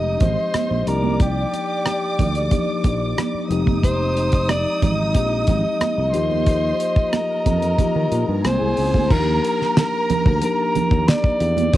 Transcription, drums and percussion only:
0.20 kick, closed hi-hat, muted conga, low conga
0.54 cross-stick, closed hi-hat, high conga
0.71 high conga
0.87 cross-stick, closed hi-hat
1.04 high conga
1.20 kick, closed hi-hat
1.54 closed hi-hat, muted conga
1.86 cross-stick, closed hi-hat, high conga
2.19 kick, closed hi-hat, muted conga, low conga
2.35 closed hi-hat
2.51 kick, closed hi-hat, muted conga, low conga
2.84 kick, closed hi-hat, muted conga
3.18 cross-stick, closed hi-hat, high conga
3.35 high conga
3.51 closed hi-hat
3.66 kick, high conga
3.84 kick, closed hi-hat
4.17 closed hi-hat
4.32 kick, closed hi-hat
4.49 cross-stick, closed hi-hat, high conga
4.82 kick, closed hi-hat, muted conga, low conga
5.14 kick, closed hi-hat, muted conga
5.47 kick, closed hi-hat, muted conga, low conga
5.81 cross-stick, closed hi-hat, high conga
5.98 high conga
6.14 closed hi-hat
6.31 high conga
6.46 kick, closed hi-hat
6.80 closed hi-hat
6.96 kick
7.13 cross-stick, closed hi-hat, high conga
7.46 kick, closed hi-hat, muted conga, low conga
7.62 closed hi-hat
7.78 kick, closed hi-hat, muted conga, low conga
8.12 closed hi-hat, muted conga
8.45 cross-stick, closed hi-hat, high conga
8.62 high conga
8.77 open hi-hat
8.94 kick, high conga
9.11 kick, crash
9.45 closed hi-hat
9.61 snare
9.77 snare, closed hi-hat, high conga
10.10 closed hi-hat, muted conga, low conga
10.26 kick
10.42 closed hi-hat, muted conga
10.75 closed hi-hat, muted conga, low conga
10.91 kick
11.08 snare, closed hi-hat, high conga
11.24 kick
11.40 closed hi-hat
11.57 closed hi-hat, high conga
11.73 kick, closed hi-hat

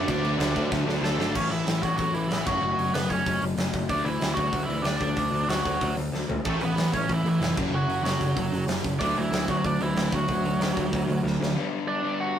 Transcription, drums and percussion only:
0.08 kick, crash
0.25 crash
0.40 snare, crash
0.56 kick, crash
0.72 kick, snare
0.89 snare
1.04 snare
1.20 snare
1.35 kick, crash
1.51 open hi-hat
1.67 snare, open hi-hat
1.83 kick, open hi-hat
1.98 kick, open hi-hat
2.15 open hi-hat
2.31 snare, open hi-hat
2.46 kick, crash
2.79 open hi-hat
2.94 snare, open hi-hat
3.10 kick, open hi-hat
3.26 kick, open hi-hat
3.42 open hi-hat
3.58 snare, open hi-hat
3.73 kick, open hi-hat
3.89 kick, open hi-hat
4.06 open hi-hat
4.21 snare, open hi-hat
4.37 kick, open hi-hat
4.53 kick, open hi-hat
4.70 open hi-hat
4.84 snare, open hi-hat
5.00 kick, open hi-hat
5.17 kick, open hi-hat
5.34 open hi-hat
5.49 snare, open hi-hat
5.66 kick, open hi-hat
5.81 kick, open hi-hat
5.97 open hi-hat
6.14 snare
6.30 floor tom
6.45 kick, crash
6.61 open hi-hat
6.77 snare, open hi-hat
6.94 kick, open hi-hat
7.09 kick, open hi-hat
7.26 open hi-hat
7.42 snare, open hi-hat
7.57 kick, crash
7.90 open hi-hat
8.05 snare, open hi-hat
8.21 kick, open hi-hat
8.37 kick, open hi-hat
8.53 open hi-hat
8.68 snare, open hi-hat
8.84 kick, open hi-hat
9.00 kick, open hi-hat
9.17 open hi-hat
9.33 snare, open hi-hat
9.48 kick, open hi-hat
9.64 kick, open hi-hat
9.81 open hi-hat
9.96 snare, open hi-hat
10.12 kick, open hi-hat
10.28 kick, open hi-hat
10.45 open hi-hat
10.61 snare, open hi-hat
10.77 kick, open hi-hat
10.93 kick, open hi-hat
11.10 open hi-hat
11.27 snare
11.43 snare

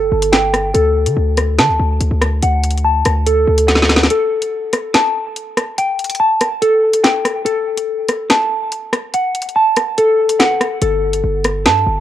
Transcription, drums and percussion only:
0.22 closed hi-hat
0.33 finger snap, snare, closed hi-hat
0.54 cross-stick, closed hi-hat
0.75 closed hi-hat
1.06 closed hi-hat
1.37 cross-stick, closed hi-hat
1.59 finger snap, snare, closed hi-hat
2.01 closed hi-hat
2.21 cross-stick, closed hi-hat
2.42 closed hi-hat
2.63 closed hi-hat
2.70 closed hi-hat
2.77 closed hi-hat
3.05 cross-stick, closed hi-hat
3.26 closed hi-hat
3.58 closed hi-hat
3.68 snare, closed hi-hat
3.75 snare
3.82 snare
3.89 snare, closed hi-hat
3.96 snare
4.03 snare
4.10 closed hi-hat
4.42 closed hi-hat
4.73 cross-stick, closed hi-hat
4.94 finger snap, snare, closed hi-hat
5.36 closed hi-hat
5.57 cross-stick, closed hi-hat
5.78 closed hi-hat
5.99 closed hi-hat
6.04 closed hi-hat
6.10 closed hi-hat
6.15 closed hi-hat
6.41 cross-stick, closed hi-hat
6.62 closed hi-hat
6.93 closed hi-hat
7.04 finger snap, snare, closed hi-hat
7.25 cross-stick, closed hi-hat
7.46 closed hi-hat
7.78 closed hi-hat
8.09 cross-stick, closed hi-hat
8.30 finger snap, snare, closed hi-hat
8.72 closed hi-hat
8.93 cross-stick, closed hi-hat
9.14 closed hi-hat
9.35 closed hi-hat
9.42 closed hi-hat
9.49 closed hi-hat
9.76 cross-stick, closed hi-hat
9.98 closed hi-hat
10.29 closed hi-hat
10.40 finger snap, snare, closed hi-hat
10.61 cross-stick, closed hi-hat
10.82 closed hi-hat
11.13 closed hi-hat
11.44 cross-stick, closed hi-hat
11.66 finger snap, snare, closed hi-hat

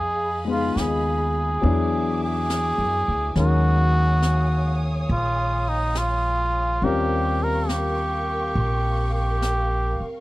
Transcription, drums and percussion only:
0.77 snare, hi-hat pedal
1.63 brush sweep
2.50 snare, hi-hat pedal
3.36 brush sweep, snare
4.22 snare, hi-hat pedal
5.09 brush sweep
5.95 snare, hi-hat pedal
6.82 brush sweep
7.69 snare, hi-hat pedal
8.55 brush sweep
9.42 snare, hi-hat pedal

